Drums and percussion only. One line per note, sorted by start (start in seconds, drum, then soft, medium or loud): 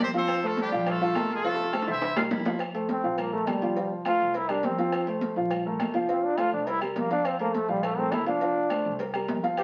0.14 cowbell medium
0.14 high conga medium
0.28 cowbell loud
0.28 high conga soft
0.28 low agogo loud
0.28 claves medium
0.43 high conga soft
0.43 low agogo medium
0.57 cowbell medium
0.57 high conga loud
0.57 low timbale medium
0.72 high conga soft
0.86 cowbell loud
0.86 high conga soft
0.86 low conga medium
0.86 low agogo loud
0.86 claves medium
1.01 high conga soft
1.01 low conga medium
1.15 cowbell medium
1.15 high conga loud
1.15 low timbale medium
1.15 low agogo loud
1.15 claves medium
1.30 high conga medium
1.30 low agogo medium
1.44 cowbell loud
1.44 high bongo loud
1.44 high conga soft
1.54 high bongo loud
1.59 high conga soft
1.64 high bongo medium
1.73 cowbell medium
1.73 high bongo medium
1.73 high conga medium
1.73 low timbale medium
1.73 low agogo loud
1.73 claves medium
1.82 low bongo loud
1.87 high conga soft
1.87 high timbale medium
2.02 cowbell loud
2.02 low bongo medium
2.02 high conga soft
2.02 high timbale loud
2.02 low agogo medium
2.16 low timbale loud
2.16 low agogo loud
2.16 claves medium
2.21 low bongo medium
2.31 cowbell medium
2.31 low bongo loud
2.31 high conga loud
2.31 low timbale medium
2.40 low bongo medium
2.45 cowbell medium
2.45 high conga medium
2.45 low timbale loud
2.50 low bongo medium
2.59 cowbell loud
2.59 low agogo loud
2.59 claves medium
2.74 high conga soft
2.74 low agogo medium
2.89 cowbell medium
2.89 high conga loud
2.89 low timbale medium
3.04 high conga soft
3.18 cowbell loud
3.18 high conga soft
3.18 low conga medium
3.18 low agogo loud
3.18 claves medium
3.33 high conga soft
3.47 cowbell medium
3.47 high conga medium
3.47 low timbale medium
3.47 low agogo loud
3.47 claves medium
3.62 high conga medium
3.62 low agogo medium
3.77 cowbell loud
3.77 high conga soft
3.91 high conga soft
4.05 cowbell medium
4.05 high conga medium
4.05 low timbale medium
4.05 low agogo loud
4.05 claves medium
4.20 high conga soft
4.34 cowbell loud
4.34 high conga soft
4.34 low agogo medium
4.49 high conga soft
4.49 low agogo loud
4.49 claves medium
4.63 cowbell medium
4.63 high conga medium
4.63 low timbale medium
4.78 cowbell medium
4.78 high conga medium
4.92 cowbell loud
4.92 high conga soft
4.92 low agogo loud
4.92 claves medium
5.07 high conga soft
5.07 low agogo medium
5.21 cowbell medium
5.21 high conga loud
5.21 low timbale medium
5.36 high conga soft
5.50 cowbell loud
5.50 high conga soft
5.50 low conga medium
5.50 low agogo loud
5.50 claves medium
5.65 high conga soft
5.65 low conga medium
5.80 cowbell medium
5.80 high conga medium
5.80 low timbale medium
5.80 low agogo loud
5.80 claves medium
5.94 high conga medium
5.94 low agogo medium
6.09 cowbell loud
6.23 high conga soft
6.38 cowbell medium
6.38 high conga medium
6.38 low timbale medium
6.38 low agogo loud
6.38 claves medium
6.53 high conga soft
6.67 cowbell loud
6.67 high conga soft
6.67 low agogo medium
6.81 high conga soft
6.81 low agogo loud
6.81 claves medium
6.96 cowbell medium
6.96 high conga medium
6.96 low timbale medium
7.11 cowbell medium
7.11 high conga medium
7.25 cowbell loud
7.25 low agogo loud
7.25 claves medium
7.40 high conga soft
7.40 low agogo medium
7.54 cowbell medium
7.54 high conga loud
7.54 low timbale medium
7.69 high conga soft
7.83 cowbell loud
7.83 high conga soft
7.83 low conga medium
7.83 low agogo loud
7.83 claves medium
7.98 high conga soft
7.98 low conga medium
8.12 cowbell medium
8.12 high conga medium
8.12 low timbale medium
8.12 low agogo loud
8.12 claves medium
8.26 high conga medium
8.26 low agogo medium
8.41 cowbell loud
8.41 high conga soft
8.56 high conga soft
8.70 cowbell medium
8.70 high conga medium
8.70 low timbale medium
8.70 low agogo loud
8.70 claves medium
8.85 high conga soft
8.99 cowbell loud
8.99 high conga soft
8.99 low agogo medium
9.14 high conga soft
9.14 low agogo loud
9.14 claves medium
9.28 cowbell medium
9.28 high conga loud
9.28 low timbale medium
9.43 cowbell medium
9.43 high conga medium
9.57 cowbell loud
9.57 high conga soft
9.57 low agogo loud
9.57 claves medium